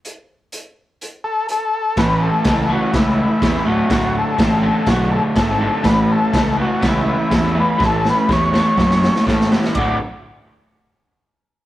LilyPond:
<<
  \new Staff \with { instrumentName = "Transistor combo organ" } { \time 4/4 \key d \major \tempo 4 = 123 r2 r8 a'8 a'4 | b'8 a'4 fis'8 e'4 e'8 fis'8 | fis'8 a'8 a'4 fis'8 a'8 a'4 | b'8 a'4 fis'8 e'4 e'8 b'8 |
a'8 b'8 cis''4 cis''4 r4 | d''8 r2. r8 | }
  \new Staff \with { instrumentName = "Overdriven electric guitar" } { \clef bass \time 4/4 \key d \major r1 | <a, e a>4 <a, e a>8 <a, e a>8 <a, e a>4 <a, e a>8 <d, a, d>8 | <d, a, d>4 <d, a, d>8 <d, a, d>8 <d, a, d>4 <d, a, d>8 <d, a, d>8 | <a, e a>4 <a, e a>8 <a, e a>8 <a, e a>4 <a, e a>8 <a, e a>8 |
<a, e a>4 <a, e a>8 <a, e a>8 <a, e a>4 <a, e a>8 <a, e a>8 | <d, a, d a fis'>8 r2. r8 | }
  \new Staff \with { instrumentName = "Picked electric bass" } { \clef bass \time 4/4 \key d \major r1 | a,,4 cis,4 cis,4 e,8 d,,8 | d,,4 a,,4 b,,4 gis,,4 | a,,4 cis,4 cis,4 e,4 |
a,,4 e,4 fis,4 a,4 | d,,8 r2. r8 | }
  \new DrumStaff \with { instrumentName = "Drums" } \drummode { \time 4/4 hh4 hh4 hh4 hh4 | <cymc bd sn>4 <cymc bd sn>4 <cymc bd sn>4 <cymc bd sn>4 | <cymc bd sn>4 <cymc bd sn>4 <cymc bd sn>4 <cymc bd sn>4 | <cymc bd sn>4 <cymc bd sn>4 <cymc bd sn>4 <cymc bd sn>4 |
<bd sn>8 sn8 <bd sn>8 sn8 <bd sn>16 sn16 sn16 sn16 <bd sn>16 sn16 sn16 sn16 | <bd rb>4 r4 r4 r4 | }
>>